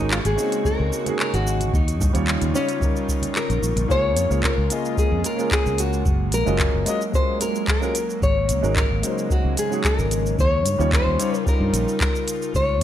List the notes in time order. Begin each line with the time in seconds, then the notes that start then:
Already playing: C#3 G#3 A#3 C#4 D#4 F#4 C#6
0.00 G#1 F#4 A#4
0.11 F4, clap, cabasa
0.25 G#1 G#4, closed hi-hat, high conga, cabasa
0.36 G#3 C#4 D#4 F#4, cabasa
0.40 C4
0.52 closed hi-hat, cabasa
0.65 A#4, kick, high conga, cabasa
0.80 C#2
0.93 cabasa
1.04 G#3 C#4 D#4 F#4, closed hi-hat, high conga, cabasa
1.09 G#4
1.19 A#4, clap, cabasa
1.33 G#1 F#4, closed hi-hat, cabasa
1.47 cabasa
1.60 closed hi-hat, high conga, cabasa
1.73 D#2 G3 D#4 F4, kick, cabasa
1.88 closed hi-hat, cabasa
2.00 G2, kick, high conga, low conga, cabasa
2.13 D#2 G3 C#4 D#4 F4 C#5, closed hi-hat, cabasa
2.28 clap, cabasa
2.42 D#2, closed hi-hat, high conga, cabasa
2.53 G3 C#4 D#4 F4 C#5, cabasa
2.69 closed hi-hat, cabasa
2.79 G3 C#4 D#4 F4, kick, high conga, cabasa
2.83 A#4
2.96 cabasa
3.08 kick, cabasa
3.22 closed hi-hat, high conga, cabasa
3.36 A#4, clap, cabasa
3.50 A#1, closed hi-hat, cabasa
3.62 A#1, cabasa
3.76 A#1, closed hi-hat, high conga, cabasa
3.88 C#2 C#3 G#3 A#3 C#4 F4 G#4 C#5, kick, cabasa
4.17 F2, closed hi-hat, cabasa
4.29 C#2 A#3 C#4 F4 G#4 C#5, cabasa
4.43 A#4, kick, clap, cabasa
4.58 C#2
4.69 A#3 C#4 F4 G#4, closed hi-hat, cabasa
4.73 D#5
4.85 cabasa
4.97 G#4, kick, cabasa
5.12 F2
5.24 A#4, closed hi-hat, cabasa
5.36 A#3 C#4 F4 G#4, cabasa
5.41 A#4
5.51 G#4, kick, clap, cabasa
5.66 C#2, cabasa
5.78 F#4, closed hi-hat, cabasa
5.93 cabasa
6.05 F#1 F#3, kick, cabasa
6.32 A#1 A#4, closed hi-hat, cabasa
6.46 F#1 G#3 C#4 F4 F#4 D#5, cabasa
6.59 kick, clap, cabasa
6.74 F#1
6.86 G#3 C#4 F4 F#4 D#5, closed hi-hat, cabasa
7.01 cabasa
7.11 G#3 C#4 F4 F#4 C5, kick, cabasa
7.16 A#4
7.41 A#4, closed hi-hat, cabasa
7.55 cabasa
7.68 A#4, kick, clap, cabasa
7.81 G#3 C#4 F4 F#4 A#4, cabasa
7.95 closed hi-hat, cabasa
8.10 cabasa
8.22 G#1 C#3 G#3 C#5, kick, cabasa
8.49 C#2, closed hi-hat, cabasa
8.62 G#1 G#3 C#4 D#4 F#4 A#4, cabasa
8.76 A#4, kick, clap, cabasa
8.91 G#1
9.01 G#3 C#4 D#4 F#4, closed hi-hat, cabasa
9.05 C5
9.18 cabasa
9.30 F#4, kick, cabasa
9.45 C#2
9.57 G#4, closed hi-hat, cabasa
9.69 G#3 C#4 D#4 F#4, cabasa
9.73 G#4
9.84 A#4, kick, clap, cabasa
9.99 G#1, cabasa
10.11 closed hi-hat, cabasa
10.26 cabasa
10.39 D#2 G3 D#4 F4 C#5, kick, cabasa
10.65 G2, closed hi-hat, cabasa
10.78 D#2 G3 C#4 D#4 F4 C#5, cabasa
10.93 C5, kick, clap, cabasa
11.06 D#2
11.18 G3 C#4 D#4 F4 C#5, closed hi-hat, cabasa
11.34 A#4, cabasa
11.44 G3 C#4 D#4 F4, kick, cabasa
11.48 A#4
11.60 G2
11.73 A#1, closed hi-hat, cabasa
11.88 cabasa
12.01 A#4, kick, clap, cabasa
12.15 cabasa
12.28 closed hi-hat, cabasa
12.42 cabasa
12.55 C#2 C#3 G#3 A#3 C#5, kick, cabasa